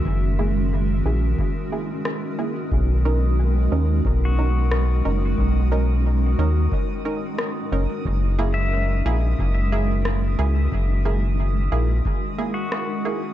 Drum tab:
SD |------r-|------r-|------r-|------r-|
BD |o---o---|o---o---|o---o---|o---o---|

SD |------r-|
BD |o---o---|